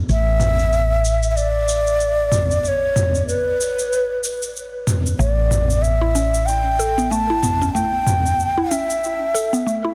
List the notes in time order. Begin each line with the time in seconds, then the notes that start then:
0.09 A1 E5, shaker
0.40 mid tom, shaker
0.59 shaker
0.73 shaker
1.05 shaker
1.23 shaker
1.30 E5
1.36 D5, shaker
1.69 shaker
1.87 shaker
2.00 shaker
2.32 mid tom, shaker
2.51 shaker
2.64 D5, shaker
2.68 C#5
2.96 mid tom, shaker
3.15 shaker
3.27 B4, shaker
3.61 shaker
3.79 shaker
3.93 shaker
4.24 shaker
4.43 shaker
4.56 shaker
4.87 mid tom, shaker
5.06 shaker
5.19 A1 A3 D5, shaker
5.51 mid tom, shaker
5.70 shaker
5.82 E5, shaker
6.01 E4
6.15 C#4, shaker
6.34 shaker
6.46 G5, shaker
6.79 A4, shaker
6.98 B3, shaker
7.11 A3 A5, shaker
7.30 E4
7.43 B3, mid tom, shaker
7.62 C#4, shaker
7.73 A3 G5, shaker
8.07 mid tom, shaker
8.26 shaker
8.40 shaker
8.58 E4
8.71 C#4 E5, shaker
8.90 shaker
9.04 shaker
9.34 A4, shaker
9.53 B3, shaker
9.66 A3, shaker
9.85 E4